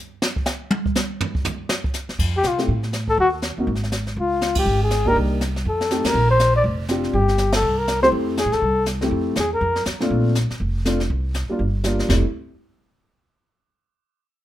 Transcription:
0.22 snare
0.36 kick
0.46 snare, hi-hat pedal
0.71 high tom
0.86 kick
0.95 snare, hi-hat pedal
1.21 floor tom
1.35 kick
1.45 floor tom, hi-hat pedal
1.69 snare
1.84 kick
1.94 snare, hi-hat pedal
2.09 muted upright bass stroke, snare
2.19 upright bass F2, brush sweep, kick, crash
2.37 flugelhorn G4
2.43 upright bass C3, snare, hi-hat pedal
2.47 flugelhorn F4
2.58 upright piano A3 C4 E4 G4, snare
2.68 upright bass A2, brush sweep, kick
2.83 snare
2.93 snare, hi-hat pedal
3.08 flugelhorn A4, kick
3.18 upright bass D#2, flugelhorn F#4, brush sweep, kick
3.42 snare, hi-hat pedal
3.57 upright bass D#2, upright piano A#3 C4 D#4 F#4
3.67 upright bass G#1, brush sweep, kick
3.75 snare
3.83 snare
3.92 snare, hi-hat pedal
4.07 snare
4.17 upright bass C#2, flugelhorn F4, brush sweep, kick
4.41 snare, hi-hat pedal
4.55 upright bass G#2, flugelhorn G4, kick, ride
4.66 upright bass G#1, brush sweep
4.83 flugelhorn G#4
4.90 snare, hi-hat pedal
5.06 upright piano A#3 D4 D#4 G4, flugelhorn A#4, kick
5.16 upright bass C2, brush sweep, kick
5.41 snare, hi-hat pedal
5.56 snare
5.65 upright bass F2, flugelhorn A4, brush sweep, kick
5.81 snare
5.90 upright piano A3 C4 D#4 G4, snare, hi-hat pedal
6.04 upright bass F2, flugelhorn A#4, snare, ride
6.14 upright bass A#1, brush sweep
6.31 flugelhorn C5
6.39 snare, hi-hat pedal
6.56 flugelhorn D5
6.64 upright bass F1, brush sweep, kick
6.88 upright piano C4 D4 F4 G4, snare, hi-hat pedal
7.04 snare
7.13 upright bass G1, flugelhorn G4, brush sweep, kick
7.28 snare
7.38 snare, hi-hat pedal
7.52 flugelhorn A4, snare, ride
7.62 upright bass C2, brush sweep
7.78 flugelhorn A#4
7.87 snare, hi-hat pedal
8.02 upright piano A3 C4 E4 G4, flugelhorn C5, snare
8.12 upright bass F2, brush sweep, kick
8.37 flugelhorn G#4, snare, hi-hat pedal
8.45 upright bass A2
8.52 upright bass E2, flugelhorn A4, snare
8.62 upright bass C2, brush sweep, kick
8.86 snare, hi-hat pedal
9.01 upright piano A3 C4 E4 G4, snare
9.11 upright bass F2, brush sweep, kick
9.36 upright bass E2, snare, hi-hat pedal
9.40 flugelhorn G#4
9.54 flugelhorn A#4
9.61 upright bass F2, brush sweep, kick
9.76 snare
9.85 upright bass F2, snare, hi-hat pedal
10.00 upright piano A#2 A3 C4 D4 F4, snare
10.10 upright bass A#1, brush sweep, kick
10.35 snare, hi-hat pedal
10.50 muted upright bass stroke, snare
10.60 upright bass F1, brush sweep, kick
10.85 upright piano A3 C4 D4 F4, snare, hi-hat pedal
11.00 snare
11.10 upright bass C2, brush sweep, kick
11.34 snare, hi-hat pedal
11.49 upright piano G3 A#3 D4 F4, muted upright bass stroke
11.59 upright bass G1, brush sweep, kick
11.84 upright piano G3 A#3 D4 F4, snare, hi-hat pedal
11.99 snare
12.09 upright bass F1, upright piano G3 A3 C4 E4, kick, snare, crash

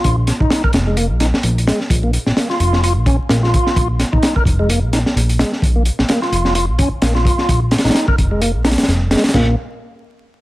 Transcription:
Already playing: tonewheel organ F4
0.04 analog synth bass A#1, kick, closed hi-hat
0.27 snare, closed hi-hat
0.40 analog synth bass A#1, tonewheel organ D#4, kick
0.51 snare, closed hi-hat
0.64 tonewheel organ A#4, kick
0.73 analog synth bass F1, snare, closed hi-hat
0.87 tonewheel organ G#3
0.97 tonewheel organ A#3, closed hi-hat
1.10 analog synth bass A#1
1.20 tonewheel organ D#4, snare, closed hi-hat
1.33 analog synth bass A#1, snare
1.43 analog synth bass A#1, closed hi-hat
1.58 closed hi-hat
1.67 tonewheel organ G#3, snare, closed hi-hat
1.81 snare
1.90 analog synth bass A#1, kick, closed hi-hat
2.03 tonewheel organ A#3
2.13 closed hi-hat
2.26 analog synth bass A#1, snare
2.37 tonewheel organ A#3, snare, closed hi-hat
2.50 tonewheel organ F4, snare
2.60 analog synth bass F1, closed hi-hat
2.73 snare
2.83 tonewheel organ F4, closed hi-hat
2.97 analog synth bass A#1
3.06 tonewheel organ C#4, kick, closed hi-hat
3.20 analog synth bass A#1
3.29 analog synth bass A#1, tonewheel organ A#3, snare, closed hi-hat
3.43 tonewheel organ F4, snare
3.54 kick, closed hi-hat
3.66 snare
3.76 analog synth bass A#1, kick, closed hi-hat
3.99 snare, closed hi-hat
4.12 analog synth bass A#1, tonewheel organ D#4, kick
4.23 snare, closed hi-hat
4.36 tonewheel organ A#4, kick
4.45 analog synth bass F1, kick, closed hi-hat
4.59 tonewheel organ G#3
4.69 tonewheel organ A#3, closed hi-hat
4.82 analog synth bass A#1
4.93 tonewheel organ D#4, snare, closed hi-hat
5.06 analog synth bass A#1, snare
5.16 analog synth bass A#1, closed hi-hat
5.29 closed hi-hat
5.39 tonewheel organ G#3, snare, closed hi-hat
5.53 snare
5.62 analog synth bass A#1, kick, closed hi-hat
5.76 tonewheel organ A#3
5.85 closed hi-hat
5.99 analog synth bass A#1, snare
6.09 tonewheel organ A#3, snare, closed hi-hat
6.22 tonewheel organ F4, snare
6.32 analog synth bass F1, closed hi-hat
6.45 snare
6.55 tonewheel organ F4, closed hi-hat
6.68 analog synth bass A#1
6.78 tonewheel organ C#4, kick, closed hi-hat
6.92 analog synth bass A#1
7.02 analog synth bass A#1, tonewheel organ A#3, snare, closed hi-hat
7.15 tonewheel organ F4, snare
7.25 kick, closed hi-hat
7.38 snare
7.49 analog synth bass A#1, kick, closed hi-hat
7.71 snare, closed hi-hat
7.78 snare, closed hi-hat
7.84 analog synth bass A#1, tonewheel organ D#4, snare, closed hi-hat
7.90 snare, closed hi-hat
7.95 snare, closed hi-hat
8.08 tonewheel organ A#4, kick
8.18 analog synth bass F1, kick, closed hi-hat
8.31 tonewheel organ G#3
8.41 tonewheel organ A#3, closed hi-hat
8.54 analog synth bass A#1
8.65 tonewheel organ D#4, snare, closed hi-hat
8.71 snare, closed hi-hat
8.77 analog synth bass F1, snare, closed hi-hat
8.83 snare, closed hi-hat
8.88 analog synth bass F1, snare, closed hi-hat
9.11 tonewheel organ G#3, snare, closed hi-hat
9.17 snare, closed hi-hat
9.24 snare, closed hi-hat
9.29 snare, closed hi-hat
9.34 analog synth bass A#1, tonewheel organ A#3, kick, snare, crash

